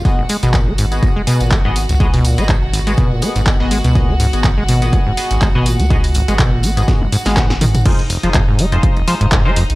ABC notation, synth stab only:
X:1
M:4/4
L:1/16
Q:"Swing 16ths" 1/4=123
K:Ab
V:1 name="Synth stab"
[_C_GAe] z2 [CGAe] z3 [CGAe]2 z [CGAe]3 [CGAe] z2 | [_C_GAe] z2 [CGAe] z3 [CGAe]2 z [CGAe]3 [CGAe] z2 | [_C_GAe] z2 [CGAe] z3 [CGAe]2 z [CGAe]3 [CGAe] z2 | [_C_GAe] z2 [CGAe] z3 [CGAe]2 z2 [CGAf] [CGA_g] z3 |
[A,EFc] z2 [A,EFc] z3 [A,EFc]2 z [A,EFc]3 [A,EFc] z2 |]